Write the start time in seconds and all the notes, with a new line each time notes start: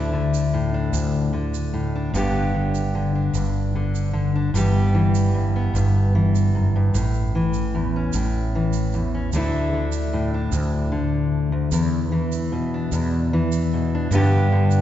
Already playing: D2 D3 A3 D4 E4
0.13 D3
0.34 shaker
0.54 A2
0.74 D4
0.93 D2, shaker
1.33 D3
1.54 shaker
1.73 A2
1.95 D4
2.13 G1 G2 D3 B3 D4 G4, shaker
2.54 D3
2.75 shaker
2.95 D3
3.15 D4
3.34 G1 G2, shaker
3.75 D3
3.95 shaker
4.13 D3
4.35 D4
4.54 G1 G2 E3 G3 B3 G4, shaker
4.94 E3
5.15 shaker
5.34 G2
5.56 B3
5.74 G1 G2, shaker
6.15 E3
6.35 shaker
6.55 F#2
6.76 G2
6.94 A1 A2, shaker
7.14 shaker
7.35 E3
7.54 shaker
7.75 E2
7.96 C#4
8.13 A1 A2, shaker
8.55 E3
8.73 shaker
8.93 E2, shaker
9.14 C#4
9.32 D2 D3 A3 D4, shaker
9.37 E4
9.73 D3
9.92 shaker
10.13 A2
10.34 D4
10.52 D2, shaker
10.92 D3
11.52 D2
11.72 E2, shaker
12.12 E3
12.32 shaker
12.52 B2
12.74 D4
12.92 E2, shaker
13.33 E3
13.52 shaker
13.73 B2
13.95 D4
14.11 G2 D3 B3 D4, shaker
14.15 G4
14.52 D3
14.71 shaker